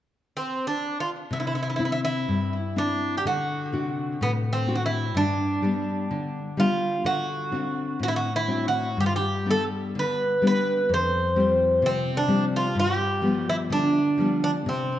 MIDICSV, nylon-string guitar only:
0, 0, Header, 1, 2, 480
1, 0, Start_track
1, 0, Tempo, 963082
1, 650, Time_signature, 2, 2, 24, 8
1, 1618, Tempo, 949367
1, 4018, Tempo, 977199
1, 4978, Tempo, 933126
1, 6418, Tempo, 956938
1, 7544, End_track
2, 0, Start_track
2, 0, Title_t, "Nylon-string guitar"
2, 0, Program_c, 0, 24
2, 651, Note_on_c, 0, 48, 55
2, 892, Note_on_c, 0, 60, 39
2, 894, Note_on_c, 0, 62, 36
2, 897, Note_on_c, 0, 64, 43
2, 1122, Note_off_c, 0, 48, 0
2, 1137, Note_on_c, 0, 43, 52
2, 1279, Note_off_c, 0, 60, 0
2, 1280, Note_off_c, 0, 62, 0
2, 1282, Note_off_c, 0, 64, 0
2, 1375, Note_on_c, 0, 60, 42
2, 1378, Note_on_c, 0, 62, 37
2, 1380, Note_on_c, 0, 64, 51
2, 1569, Note_off_c, 0, 60, 0
2, 1570, Note_off_c, 0, 62, 0
2, 1571, Note_off_c, 0, 64, 0
2, 1604, Note_off_c, 0, 43, 0
2, 1621, Note_on_c, 0, 50, 53
2, 1860, Note_on_c, 0, 48, 38
2, 1864, Note_on_c, 0, 62, 39
2, 1865, Note_on_c, 0, 66, 49
2, 2086, Note_off_c, 0, 50, 0
2, 2105, Note_on_c, 0, 45, 59
2, 2242, Note_off_c, 0, 48, 0
2, 2243, Note_off_c, 0, 62, 0
2, 2244, Note_off_c, 0, 66, 0
2, 2338, Note_on_c, 0, 60, 44
2, 2343, Note_on_c, 0, 62, 42
2, 2345, Note_on_c, 0, 66, 50
2, 2529, Note_off_c, 0, 60, 0
2, 2532, Note_off_c, 0, 62, 0
2, 2533, Note_off_c, 0, 66, 0
2, 2565, Note_off_c, 0, 45, 0
2, 2577, Note_on_c, 0, 43, 58
2, 2819, Note_on_c, 0, 55, 39
2, 2822, Note_on_c, 0, 59, 38
2, 2824, Note_on_c, 0, 62, 47
2, 3042, Note_off_c, 0, 43, 0
2, 3064, Note_on_c, 0, 50, 55
2, 3201, Note_off_c, 0, 55, 0
2, 3203, Note_off_c, 0, 59, 0
2, 3203, Note_off_c, 0, 62, 0
2, 3299, Note_on_c, 0, 55, 47
2, 3301, Note_on_c, 0, 59, 43
2, 3303, Note_on_c, 0, 62, 49
2, 3489, Note_off_c, 0, 55, 0
2, 3490, Note_off_c, 0, 59, 0
2, 3492, Note_off_c, 0, 62, 0
2, 3524, Note_off_c, 0, 50, 0
2, 3538, Note_on_c, 0, 50, 56
2, 3776, Note_on_c, 0, 60, 43
2, 3779, Note_on_c, 0, 62, 37
2, 3780, Note_on_c, 0, 66, 45
2, 4007, Note_off_c, 0, 50, 0
2, 4019, Note_on_c, 0, 45, 48
2, 4164, Note_off_c, 0, 60, 0
2, 4165, Note_off_c, 0, 62, 0
2, 4166, Note_off_c, 0, 66, 0
2, 4257, Note_on_c, 0, 60, 41
2, 4259, Note_on_c, 0, 62, 39
2, 4262, Note_on_c, 0, 66, 49
2, 4450, Note_off_c, 0, 60, 0
2, 4451, Note_off_c, 0, 62, 0
2, 4453, Note_off_c, 0, 66, 0
2, 4484, Note_off_c, 0, 45, 0
2, 4498, Note_on_c, 0, 43, 48
2, 4737, Note_on_c, 0, 55, 40
2, 4739, Note_on_c, 0, 59, 37
2, 4741, Note_on_c, 0, 62, 40
2, 4964, Note_off_c, 0, 43, 0
2, 4980, Note_on_c, 0, 50, 53
2, 5126, Note_off_c, 0, 55, 0
2, 5126, Note_off_c, 0, 59, 0
2, 5129, Note_off_c, 0, 62, 0
2, 5220, Note_on_c, 0, 55, 42
2, 5224, Note_on_c, 0, 59, 40
2, 5227, Note_on_c, 0, 62, 46
2, 5417, Note_off_c, 0, 55, 0
2, 5418, Note_off_c, 0, 59, 0
2, 5420, Note_off_c, 0, 62, 0
2, 5454, Note_off_c, 0, 50, 0
2, 5464, Note_on_c, 0, 41, 57
2, 5703, Note_on_c, 0, 53, 40
2, 5706, Note_on_c, 0, 55, 37
2, 5707, Note_on_c, 0, 60, 46
2, 5927, Note_off_c, 0, 41, 0
2, 5942, Note_on_c, 0, 48, 62
2, 6084, Note_off_c, 0, 53, 0
2, 6085, Note_off_c, 0, 55, 0
2, 6086, Note_off_c, 0, 60, 0
2, 6175, Note_on_c, 0, 53, 46
2, 6179, Note_on_c, 0, 55, 46
2, 6180, Note_on_c, 0, 60, 47
2, 6369, Note_off_c, 0, 53, 0
2, 6369, Note_off_c, 0, 55, 0
2, 6371, Note_off_c, 0, 60, 0
2, 6404, Note_off_c, 0, 48, 0
2, 6420, Note_on_c, 0, 43, 59
2, 6654, Note_on_c, 0, 53, 48
2, 6658, Note_on_c, 0, 55, 37
2, 6660, Note_on_c, 0, 59, 46
2, 6880, Note_off_c, 0, 43, 0
2, 6897, Note_on_c, 0, 50, 61
2, 7040, Note_off_c, 0, 53, 0
2, 7040, Note_off_c, 0, 55, 0
2, 7043, Note_off_c, 0, 59, 0
2, 7135, Note_on_c, 0, 53, 49
2, 7137, Note_on_c, 0, 55, 46
2, 7139, Note_on_c, 0, 59, 54
2, 7328, Note_off_c, 0, 53, 0
2, 7330, Note_off_c, 0, 55, 0
2, 7331, Note_off_c, 0, 59, 0
2, 7364, Note_off_c, 0, 50, 0
2, 7378, Note_on_c, 0, 48, 53
2, 7544, Note_off_c, 0, 48, 0
2, 7544, End_track
0, 0, End_of_file